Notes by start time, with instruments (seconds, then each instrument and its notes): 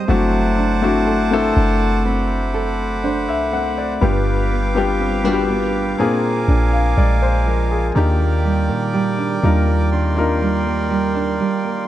Already playing: nylon-string guitar C4 D#4, accordion C5
0.08 808-style bass F#1, nylon-string guitar F#3, grand piano A3 C4 D4 E4 F#4, accordion F#5 A5 D6
0.57 nylon-string guitar D4
0.81 808-style bass G1, grand piano A3 C4 D4 E4 F#4
1.07 nylon-string guitar A4
1.31 grand piano A3 C4 D4 E4 A4
1.56 808-style bass F#1, nylon-string guitar D4
2.05 nylon-string guitar C4, accordion B5
2.54 nylon-string guitar A4
3.03 nylon-string guitar D4, grand piano C5
3.28 808-style bass C2, grand piano E5
3.52 nylon-string guitar C4, grand piano F#5
3.78 grand piano D5
4.01 808-style bass G1, nylon-string guitar G2, grand piano G3 B3 D4 F4 G4, accordion B4 F5 G5
4.51 nylon-string guitar B3
4.75 grand piano G3 B3 D4 F4 G4
5.00 nylon-string guitar C4
5.24 grand piano G3 B3 D4 F4 F#4, nylon-string guitar D4
5.33 grand piano G4
5.49 nylon-string guitar B3
5.98 nylon-string guitar A#2, grand piano A#3 C4 D4 F4 G#4, accordion A#4 G#5
6.48 808-style bass A#1, nylon-string guitar D4
6.73 grand piano F5
6.97 808-style bass A#1, nylon-string guitar G#3, grand piano D5
7.22 grand piano C5
7.46 nylon-string guitar F3, grand piano A#4
7.71 grand piano G#4
7.95 808-style bass D#2, nylon-string guitar D#3 D4, grand piano A#3 D4 D#4 F4 G4, accordion A#4 D5 G5 D6
8.20 nylon-string guitar A#3
8.44 nylon-string guitar G3
8.69 808-style bass A#2, nylon-string guitar A#3
8.94 nylon-string guitar G3
9.18 nylon-string guitar D4
9.42 808-style bass D#2, nylon-string guitar G3, grand piano A#3 D4 D#4 F4 A#4
9.67 nylon-string guitar A#3
9.92 nylon-string guitar D#3 D4, accordion C6
10.16 grand piano A#3 D4 D#4 F4 A#4, nylon-string guitar A#3
10.41 nylon-string guitar G3
10.66 nylon-string guitar A#3
10.90 nylon-string guitar G3
11.15 nylon-string guitar D4
11.40 nylon-string guitar G3, 808-style bass G3
11.64 nylon-string guitar A#3